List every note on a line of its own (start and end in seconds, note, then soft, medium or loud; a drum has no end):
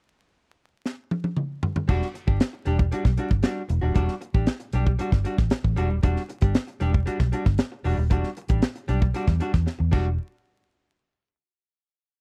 0.86 snare soft
1.11 high tom medium
1.24 high tom medium
1.37 mid tom medium
1.63 floor tom medium
1.76 floor tom medium
1.88 2.00 E1 medium
1.88 2.06 G3 medium
1.88 2.06 D4 medium
1.88 2.07 F#4 medium
1.88 kick medium
1.88 crash medium
2.02 snare soft
2.14 muted hollow-body jazz guitar stroke soft
2.14 closed hi-hat medium
2.27 2.39 G1 medium
2.27 2.39 G3 soft
2.27 2.40 D4 soft
2.27 2.41 G4 soft
2.27 kick medium
2.40 muted hollow-body jazz guitar stroke soft
2.40 snare loud
2.40 closed hi-hat medium
2.53 muted hollow-body jazz guitar stroke soft
2.65 2.89 E1 medium
2.65 2.84 G3 medium
2.65 2.79 D4 medium
2.65 2.79 G4 medium
2.65 closed hi-hat medium
2.79 muted hollow-body jazz guitar stroke medium
2.79 kick loud
2.92 3.10 G3 medium
2.92 3.05 D4 medium
2.92 3.03 F#4 medium
2.92 muted fingered electric bass stroke soft
2.92 closed hi-hat medium
3.05 3.16 B1 medium
3.05 muted hollow-body jazz guitar stroke soft
3.05 kick medium
3.05 snare soft
3.17 3.32 G3 medium
3.17 3.31 D4 medium
3.17 3.29 F#4 medium
3.17 closed hi-hat medium
3.31 3.42 G1 medium
3.31 muted hollow-body jazz guitar stroke soft
3.31 kick medium
3.43 3.61 G3 medium
3.43 3.62 D4 medium
3.43 3.62 F#4 medium
3.43 snare loud
3.43 closed hi-hat medium
3.69 3.81 E1 medium
3.69 muted hollow-body jazz guitar stroke soft
3.69 closed hi-hat medium
3.81 3.94 D#1 medium
3.81 3.93 G3 soft
3.81 3.94 D4 medium
3.81 3.95 F#4 medium
3.94 4.07 E1 medium
3.94 4.13 G3 medium
3.94 4.13 D4 medium
3.94 4.14 F#4 loud
3.94 kick medium
3.94 closed hi-hat medium
4.08 snare soft
4.21 muted hollow-body jazz guitar stroke soft
4.21 closed hi-hat medium
4.34 4.46 A1 medium
4.34 4.46 G3 soft
4.34 4.47 D4 medium
4.34 4.48 G4 medium
4.34 kick loud
4.47 muted hollow-body jazz guitar stroke soft
4.47 snare loud
4.47 closed hi-hat medium
4.60 muted hollow-body jazz guitar stroke soft
4.60 closed hi-hat soft
4.73 4.96 B1 medium
4.73 4.91 G3 medium
4.73 4.86 D4 medium
4.73 4.86 G4 medium
4.73 closed hi-hat medium
4.86 muted hollow-body jazz guitar stroke soft
4.86 kick medium
4.99 5.17 G3 medium
4.99 5.12 D4 medium
4.99 5.11 F#4 medium
4.99 muted fingered electric bass stroke soft
4.99 closed hi-hat medium
5.12 5.24 G1 medium
5.12 muted hollow-body jazz guitar stroke soft
5.12 kick medium
5.12 snare soft
5.24 5.39 G3 medium
5.24 5.38 D4 medium
5.24 5.37 F#4 medium
5.24 closed hi-hat medium
5.38 5.50 A1 medium
5.38 muted hollow-body jazz guitar stroke soft
5.38 kick medium
5.38 snare soft
5.50 muted hollow-body jazz guitar stroke soft
5.50 snare medium
5.50 closed hi-hat medium
5.64 5.76 A1 medium
5.64 muted hollow-body jazz guitar stroke soft
5.64 kick medium
5.76 5.90 E1 medium
5.76 5.95 G3 medium
5.76 5.90 D4 medium
5.76 5.89 F#4 medium
5.76 closed hi-hat medium
5.90 6.02 D#1 medium
5.90 muted hollow-body jazz guitar stroke soft
6.03 6.15 E1 medium
6.03 6.21 G3 medium
6.03 6.21 D4 medium
6.03 6.22 F#4 medium
6.03 kick medium
6.03 closed hi-hat medium
6.16 snare soft
6.29 muted hollow-body jazz guitar stroke soft
6.29 closed hi-hat medium
6.41 6.54 G1 medium
6.41 6.54 G3 soft
6.41 6.55 D4 soft
6.41 6.56 G4 medium
6.41 kick medium
6.41 closed hi-hat medium
6.55 muted hollow-body jazz guitar stroke soft
6.55 snare loud
6.55 closed hi-hat medium
6.67 muted hollow-body jazz guitar stroke soft
6.67 closed hi-hat medium
6.80 7.04 E1 medium
6.80 6.98 G3 medium
6.80 6.93 D4 medium
6.80 6.93 G4 medium
6.80 closed hi-hat medium
6.93 muted hollow-body jazz guitar stroke medium
6.93 kick medium
7.06 7.24 G3 medium
7.06 7.19 D4 medium
7.06 7.18 F#4 medium
7.06 muted fingered electric bass stroke soft
7.06 closed hi-hat medium
7.19 7.31 B1 medium
7.19 muted hollow-body jazz guitar stroke soft
7.19 kick medium
7.19 snare soft
7.32 7.47 G3 medium
7.32 7.45 D4 medium
7.32 7.44 F#4 medium
7.32 closed hi-hat medium
7.45 7.57 G1 medium
7.45 muted hollow-body jazz guitar stroke soft
7.45 kick medium
7.45 snare soft
7.58 muted hollow-body jazz guitar stroke soft
7.58 snare loud
7.58 closed hi-hat medium
7.72 muted hollow-body jazz guitar stroke soft
7.84 7.96 E1 medium
7.84 8.03 G3 medium
7.84 7.98 D4 medium
7.84 7.96 F#4 medium
7.84 open hi-hat medium
7.98 8.11 D#1 medium
7.98 muted hollow-body jazz guitar stroke soft
8.10 8.22 E1 medium
8.10 8.28 G3 medium
8.10 8.29 D4 medium
8.10 8.29 F#4 medium
8.10 kick medium
8.10 closed hi-hat medium
8.23 snare soft
8.37 muted hollow-body jazz guitar stroke soft
8.37 closed hi-hat medium
8.49 8.61 A1 medium
8.49 8.61 G3 soft
8.49 8.62 D4 soft
8.49 8.63 G4 soft
8.49 kick medium
8.49 closed hi-hat medium
8.62 muted hollow-body jazz guitar stroke soft
8.62 snare loud
8.62 closed hi-hat medium
8.76 muted hollow-body jazz guitar stroke soft
8.76 closed hi-hat soft
8.88 9.11 B1 medium
8.88 9.06 G3 medium
8.88 9.02 D4 medium
8.88 9.01 G4 medium
8.88 closed hi-hat medium
9.01 muted hollow-body jazz guitar stroke soft
9.01 kick loud
9.14 9.32 G3 medium
9.14 9.28 D4 medium
9.14 9.26 F#4 medium
9.14 closed hi-hat medium
9.27 9.39 E2 loud
9.27 muted hollow-body jazz guitar stroke medium
9.27 kick medium
9.27 snare soft
9.40 9.54 G3 medium
9.40 9.53 D4 medium
9.40 9.52 F#4 medium
9.40 closed hi-hat medium
9.53 9.65 E2 medium
9.53 muted hollow-body jazz guitar stroke soft
9.53 kick medium
9.53 snare soft
9.66 muted hollow-body jazz guitar stroke soft
9.66 snare medium
9.79 9.91 E2 medium
9.79 muted hollow-body jazz guitar stroke soft
9.91 10.17 E1 loud
9.91 10.08 G3 medium
9.91 10.08 D4 medium
9.91 10.08 F#4 medium
9.91 kick loud
9.91 crash medium